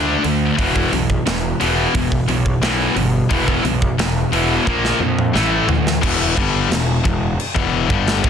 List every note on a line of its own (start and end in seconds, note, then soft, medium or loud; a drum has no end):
0.00 0.15 D2 medium
0.00 0.21 D3 medium
0.00 0.22 A3 medium
0.00 0.22 D4 loud
0.23 0.49 D2 medium
0.23 0.54 D3 medium
0.23 0.54 A3 medium
0.23 open hi-hat medium
0.57 0.84 E1 medium
0.57 0.90 E2 medium
0.57 0.90 B2 medium
0.57 0.90 E3 medium
0.57 kick loud
0.57 open hi-hat medium
0.76 kick medium
0.92 1.17 B1 medium
0.92 1.23 E2 medium
0.92 1.23 B2 medium
0.92 open hi-hat medium
1.10 kick medium
1.26 1.52 E1 loud
1.26 1.57 E2 medium
1.26 1.57 B2 medium
1.26 snare loud
1.26 open hi-hat medium
1.60 1.86 E1 medium
1.60 1.92 E2 medium
1.60 1.93 B2 loud
1.60 1.93 E3 medium
1.60 open hi-hat medium
1.94 2.20 E1 medium
1.94 2.25 E2 medium
1.94 2.25 B2 medium
1.94 kick loud
1.94 open hi-hat medium
2.12 kick medium
2.28 2.53 B1 medium
2.28 2.59 E2 medium
2.28 2.59 B2 medium
2.28 open hi-hat medium
2.46 kick medium
2.61 2.87 B1 medium
2.61 2.94 E2 medium
2.61 2.95 B2 loud
2.61 2.95 E3 loud
2.61 snare loud
2.61 open hi-hat medium
2.96 3.21 G1 medium
2.96 3.27 E2 medium
2.96 3.27 B2 medium
2.96 open hi-hat medium
3.29 3.56 E1 loud
3.29 3.62 E2 medium
3.29 3.63 B2 medium
3.29 3.63 E3 medium
3.29 kick loud
3.29 open hi-hat medium
3.48 kick medium
3.63 3.89 B1 medium
3.63 3.95 E2 medium
3.63 3.95 B2 medium
3.63 open hi-hat medium
3.82 kick medium
3.98 4.23 E1 medium
3.98 4.29 E2 medium
3.98 4.29 B2 medium
3.98 snare loud
3.98 open hi-hat medium
4.32 4.57 E1 medium
4.32 4.64 E2 medium
4.32 4.65 B2 medium
4.32 4.65 E3 medium
4.32 open hi-hat medium
4.66 4.92 A#1 medium
4.66 4.98 A#2 medium
4.66 4.99 F3 medium
4.66 4.99 A#3 medium
4.66 kick loud
4.85 snare medium
5.00 5.35 F2 medium
5.00 5.31 A#2 medium
5.00 5.31 F3 medium
5.19 mid tom medium
5.33 5.59 A1 loud
5.33 5.66 A2 medium
5.33 5.67 E3 medium
5.33 5.67 A3 medium
5.33 snare medium
5.68 5.93 D2 medium
5.68 5.99 A2 medium
5.68 5.99 E3 medium
5.68 floor tom medium
5.87 snare medium
6.02 6.35 E1 medium
6.02 6.35 E2 medium
6.02 6.36 B2 loud
6.02 6.36 E3 loud
6.02 kick loud
6.02 crash loud
6.02 crash medium
6.36 6.68 G1 medium
6.36 6.69 G2 medium
6.36 6.70 D3 medium
6.36 6.70 G3 loud
6.36 kick loud
6.69 7.01 E1 medium
6.69 6.98 E2 medium
6.69 6.98 B2 medium
6.69 snare loud
6.69 crash medium
7.04 7.37 E1 medium
7.04 7.32 E2 medium
7.04 7.32 B2 medium
7.04 kick loud
7.40 crash medium
7.55 7.87 E1 loud
7.55 7.88 E2 medium
7.55 7.88 B2 medium
7.55 7.89 E3 medium
7.55 kick loud
7.88 8.21 G1 medium
7.88 8.22 G2 medium
7.88 8.22 D3 loud
7.88 8.23 G3 loud
7.88 kick loud
8.07 snare loud
8.07 crash medium
8.23 8.30 E1 medium
8.23 8.30 E2 medium
8.23 8.30 B2 loud
8.23 kick loud